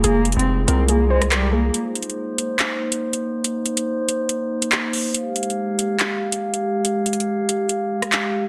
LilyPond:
<<
  \new Staff \with { instrumentName = "Synth pluck" } { \time 4/4 \key c \minor \tempo 4 = 141 aes'4. bes'8 aes'8 c''8 bes'8 aes'8 | r1 | r1 | r1 |
r1 | }
  \new Staff \with { instrumentName = "Glass harmonica" } { \time 4/4 \key c \minor <aes f' aes'>1 | <bes ees' c''>1~ | <bes ees' c''>1 | <aes g' f''>1~ |
<aes g' f''>1 | }
  \new Staff \with { instrumentName = "Cello" } { \time 4/4 \key c \minor bes8. c'8. c'8 bes8 aes8 g8 bes8 | r1 | r1 | r1 |
r1 | }
  \new Staff \with { instrumentName = "808-style bass" } { \clef bass \time 4/4 \key c \minor f,,8. f,,8. c,2~ c,8 | r1 | r1 | r1 |
r1 | }
  \new DrumStaff \with { instrumentName = "Drums" } \drummode { \time 4/4 \tuplet 3/2 { hh16 r16 r16 hh16 hh16 hh16 } r8 hh8 hh8. <hh ss>16 <hc hh>4 | \tuplet 3/2 { hh16 r16 r16 hh16 hh16 hh16 } r8 hh8 <hc hh>8. hh16 r16 hh8. | hh8 hh16 hh16 r8 hh8 hh8. hh16 <hc hh>8 hho8 | \tuplet 3/2 { hh16 r16 r16 hh16 hh16 hh16 } r8 hh8 <hc hh>8. hh16 r16 hh8. |
\tuplet 3/2 { hh16 r16 r16 hh16 hh16 hh16 } r8 hh8 hh8. <hh ss>16 <hc hh>4 | }
>>